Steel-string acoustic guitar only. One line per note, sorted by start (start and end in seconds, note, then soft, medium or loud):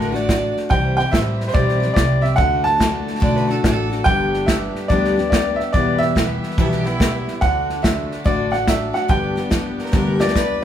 0.00 0.13 D3 loud
0.00 0.13 A3 loud
0.00 0.13 D4 loud
0.00 0.11 F#4 loud
0.12 0.70 A3 medium
0.12 0.70 D4 medium
0.12 0.69 F#4 medium
0.69 0.97 C3 medium
0.69 0.97 E3 medium
0.69 0.97 G3 medium
0.69 0.97 C4 medium
0.69 0.96 G4 medium
0.97 1.11 G3 soft
0.97 1.12 C4 medium
0.97 1.12 G4 medium
1.11 1.52 E3 medium
1.11 1.53 G3 medium
1.11 1.54 C4 medium
1.11 1.54 G4 medium
1.53 1.80 C3 medium
1.53 1.81 E3 medium
1.53 1.81 G3 medium
1.53 1.81 C4 loud
1.53 1.79 G4 medium
1.80 2.24 G3 soft
1.80 2.22 C4 soft
1.80 2.20 G4 medium
2.21 2.37 G3 soft
2.21 2.38 C4 medium
2.21 2.37 G4 medium
2.37 2.77 D3 medium
2.37 2.78 A3 medium
2.37 2.80 D4 medium
2.37 2.80 F#4 medium
2.78 3.19 D3 medium
2.78 3.20 A3 medium
2.78 3.21 D4 medium
2.78 3.21 F#4 medium
3.20 3.48 D3 loud
3.20 3.48 A3 medium
3.20 3.48 D4 loud
3.20 3.46 F#4 loud
3.47 3.92 A3 medium
3.47 3.90 D4 medium
3.47 3.88 F#4 medium
3.89 4.06 D4 medium
3.89 4.05 F#4 medium
3.94 4.06 A3 soft
4.05 4.47 G2 medium
4.05 4.47 D3 medium
4.05 4.47 G3 medium
4.05 4.48 B3 medium
4.05 4.48 D4 medium
4.05 4.50 G4 medium
4.47 4.90 G3 medium
4.47 4.90 B3 medium
4.47 4.90 D4 medium
4.47 4.91 G4 medium
4.89 5.16 G2 medium
4.89 5.17 D3 medium
4.89 5.17 G3 medium
4.89 5.17 B3 loud
4.89 5.16 D4 medium
4.89 5.15 G4 medium
5.16 5.74 G3 soft
5.16 5.74 B3 soft
5.16 5.74 D4 medium
5.16 5.73 G4 medium
5.73 6.15 E2 medium
5.73 6.15 B2 medium
5.73 6.14 E3 medium
5.73 6.15 G3 medium
5.73 6.16 B3 medium
5.73 6.16 G4 medium
6.15 6.57 E3 medium
6.15 6.58 G3 medium
6.15 6.58 B3 medium
6.15 6.59 G4 medium
6.58 6.85 E2 medium
6.58 6.85 B2 medium
6.58 6.85 E3 loud
6.58 6.85 G3 loud
6.58 6.85 B3 loud
6.58 6.83 G4 loud
6.84 7.41 E3 medium
6.84 7.42 G3 medium
6.84 7.42 B3 medium
6.84 7.41 G4 medium
7.41 7.81 D3 medium
7.41 7.82 A3 medium
7.41 7.84 D4 loud
7.41 7.84 F#4 medium
7.82 8.23 D3 medium
7.82 8.24 A3 medium
7.82 8.25 D4 medium
7.82 8.26 F#4 medium
8.24 8.52 D3 medium
8.24 8.52 A3 medium
8.24 8.52 D4 medium
8.24 8.50 F#4 loud
8.51 8.95 A3 soft
8.51 8.95 D4 medium
8.51 8.92 F#4 medium
8.93 9.09 A3 soft
8.93 9.09 D4 soft
8.93 9.08 F#4 medium
9.08 9.36 G2 medium
9.08 9.36 D3 medium
9.08 9.36 G3 medium
9.08 9.36 B3 medium
9.08 9.36 D4 medium
9.08 9.34 G4 medium
9.36 9.48 G3 soft
9.36 9.49 B3 soft
9.36 9.51 D4 medium
9.36 9.51 G4 soft
9.49 9.92 G3 medium
9.49 9.92 B3 medium
9.49 9.93 D4 medium
9.49 9.93 G4 medium
9.92 10.20 G2 loud
9.92 10.20 D3 loud
9.92 10.20 G3 loud
9.92 10.20 B3 loud
9.92 10.19 D4 loud
9.92 10.18 G4 loud
10.19 10.63 G3 medium
10.19 10.62 B3 medium
10.19 10.61 D4 soft
10.19 10.60 G4 medium
10.61 10.64 G4 medium